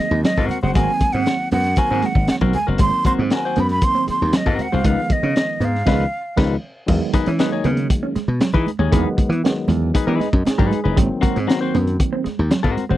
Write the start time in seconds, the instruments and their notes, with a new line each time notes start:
Already playing: tine electric piano D#3 F#3 A#3 C4, flute D#5
0.11 slap bass D#2
0.23 clean electric guitar F#3, flute D#5, snare, closed hi-hat, muted conga, high conga
0.36 slap bass G#2, clean electric guitar C4 F#4 A#4, muted clean electric guitar stroke, kick, low conga
0.49 flute F#5, closed hi-hat, high conga, low conga
0.62 slap bass F#1, clean electric guitar G#3 C4 F#4 C5, flute F#5
0.75 slap bass G#1, tine electric piano D#3 F#3 A#3 B3, clean electric guitar G#3 C4 F#4 A#4, flute G#5, kick, closed hi-hat
0.83 tine electric piano C4
1.00 muted slap bass stroke, muted clean electric guitar stroke, kick, closed hi-hat, muted conga, high conga
1.13 slap bass G#2, clean electric guitar C4, flute F#5, closed hi-hat, high conga
1.26 snare, closed hi-hat
1.51 slap bass F#2, clean electric guitar B3, flute F#5, closed hi-hat, muted conga, high conga, low conga
1.64 snare, closed hi-hat
1.76 tine electric piano D#3 F#3 A#3 C4, clean electric guitar C4 F#4 A#4, flute G#5, muted clean electric guitar stroke, kick, closed hi-hat
1.91 slap bass G#2, clean electric guitar C4 F#4 A#4
2.02 clean electric guitar G#3, flute F#5, snare, closed hi-hat, muted conga, high conga
2.15 slap bass G#1, kick
2.28 flute F#5, muted clean electric guitar stroke, muted slap bass stroke, snare, closed hi-hat, high conga
2.41 slap bass B1, clean electric guitar F#3 C4 F#4 A#4, kick, low conga
2.53 clean electric guitar G#3, flute G#5, closed hi-hat, muted conga, high conga, low conga
2.67 slap bass F#1, clean electric guitar C4 F#4 A#4
2.78 slap bass G#1, tine electric piano D#3 F#3 A#3 C4, clean electric guitar G#3, flute C6, kick, closed hi-hat
3.04 clean electric guitar C4 F#4 A#4, flute C6, muted slap bass stroke, muted clean electric guitar stroke, kick, closed hi-hat, muted conga, high conga
3.18 slap bass G#2, clean electric guitar C4, high conga
3.30 clean electric guitar C4 F#4 A#4, flute G#5, snare, closed hi-hat, muted conga
3.45 clean electric guitar C4 F#4 C5
3.56 slap bass F#2, clean electric guitar B3, closed hi-hat, muted conga, high conga, low conga
3.60 flute B5
3.69 flute B5, snare, closed hi-hat
3.81 tine electric piano D#3 F#3 A#3 C4, flute C6, muted clean electric guitar stroke, kick, closed hi-hat, muted conga
3.95 clean electric guitar C4
4.07 clean electric guitar G#3, flute C6, muted slap bass stroke, snare, closed hi-hat, muted conga, high conga
4.22 slap bass D#2
4.33 clean electric guitar F#3, flute D#5, snare, closed hi-hat, high conga
4.46 slap bass G#2, clean electric guitar C4 F#4 A#4, muted clean electric guitar stroke, kick, low conga
4.59 flute F#5, closed hi-hat, muted conga, high conga, low conga
4.72 slap bass C2, clean electric guitar G#3 C4 F#4 C5, flute F5
4.84 slap bass C#2, tine electric piano D#3 F3 G#3 A#3, clean electric guitar G#3 D#4 F4 B4, kick, closed hi-hat
4.90 tine electric piano B3
5.10 flute D#5, muted slap bass stroke, muted clean electric guitar stroke, kick, closed hi-hat, high conga
5.23 slap bass C#3, clean electric guitar C#4, high conga
5.36 snare, closed hi-hat, muted conga
5.60 slap bass G#2, clean electric guitar B3, closed hi-hat, muted conga, high conga, low conga
5.64 flute F5
5.75 snare
5.86 slap bass C#2, tine electric piano D#3 F3 G#3 B3, clean electric guitar D#4 F4 B4, kick, snare, crash
6.36 slap bass C#2, tine electric piano D#3 F3 G#3 B3, clean electric guitar D#4 F4 B4, kick, snare, crash
6.86 slap bass E2, tine electric piano D#3 F#3 G#3 B3, clean electric guitar G#3, kick, crash
7.14 clean electric guitar D#4 G#4 B4, muted slap bass stroke, muted clean electric guitar stroke, kick, closed hi-hat, muted conga, high conga
7.26 slap bass E3, clean electric guitar C#4, closed hi-hat, high conga
7.39 tine electric piano D#3 F#3 G#3 A#3, clean electric guitar D#4 G#4 B4, snare, closed hi-hat, muted conga
7.52 clean electric guitar D#4 G#4 C#5
7.64 slap bass C#3, clean electric guitar B3, closed hi-hat, muted conga, high conga, low conga
7.77 closed hi-hat
7.90 muted clean electric guitar stroke, kick, closed hi-hat
8.03 clean electric guitar C#4
8.15 clean electric guitar G#3, muted slap bass stroke, snare, closed hi-hat, muted conga, high conga
8.28 slap bass B2
8.40 clean electric guitar F#3, snare, closed hi-hat, high conga
8.53 slap bass E3, clean electric guitar D#4 G#4 B4, muted clean electric guitar stroke, kick, low conga
8.67 closed hi-hat, muted conga, high conga
8.79 slap bass D#2, clean electric guitar G#3 D#4 G#4 C#5
8.92 slap bass E2, tine electric piano D#3 F#3 G#3 A#3, clean electric guitar G#3 D#4 G#4 B4, kick, closed hi-hat
8.99 tine electric piano B3
9.17 muted clean electric guitar stroke, muted slap bass stroke, kick, closed hi-hat, muted conga, high conga
9.29 slap bass E3, clean electric guitar B3, closed hi-hat, high conga
9.43 tine electric piano D#3 F#3 G#3 B3, snare, closed hi-hat, muted conga
9.68 slap bass E2, clean electric guitar G#3, closed hi-hat, high conga, low conga
9.94 clean electric guitar D#4 G#4 B4, muted clean electric guitar stroke, kick, closed hi-hat
10.07 slap bass E3, clean electric guitar B3 D#4 G#4 B4
10.20 clean electric guitar G#3, tine electric piano D#5, snare, closed hi-hat, muted conga, high conga
10.33 slap bass F#2, kick
10.45 tine electric piano D#4 G#4, muted clean electric guitar stroke, muted slap bass stroke, snare, closed hi-hat, muted conga, high conga
10.58 slap bass G#2, clean electric guitar F#3 D#4 G#4 B4, tine electric piano F#4, kick, low conga
10.71 clean electric guitar G#3, tine electric piano G#4, closed hi-hat, muted conga, high conga
10.84 slap bass F#1, clean electric guitar D#4 G#4 B4, tine electric piano E4
10.96 slap bass G#1, tine electric piano D#3 F#3 A#3 C4, clean electric guitar G#3, kick, closed hi-hat
11.21 clean electric guitar C4 F#4 A#4, muted slap bass stroke, muted clean electric guitar stroke, kick, closed hi-hat, muted conga, high conga
11.36 slap bass G#2, clean electric guitar C4, closed hi-hat, high conga
11.47 tine electric piano D#3 F#3 A#3 C4, clean electric guitar C4 F#4 A#4, snare, closed hi-hat, muted conga
11.61 clean electric guitar C4 F#4 C5
11.75 slap bass F#2, clean electric guitar B3, closed hi-hat, high conga, low conga
11.87 closed hi-hat
12.00 muted clean electric guitar stroke, kick, closed hi-hat
12.13 clean electric guitar C4
12.24 clean electric guitar G#3, muted slap bass stroke, snare, closed hi-hat, muted conga, high conga
12.39 slap bass D#2
12.51 clean electric guitar F#3, snare, closed hi-hat, high conga
12.63 slap bass G#2, clean electric guitar C4 F#4 A#4, kick, low conga
12.77 closed hi-hat, high conga
12.89 slap bass F#1, clean electric guitar G#3 C4 F#4 C5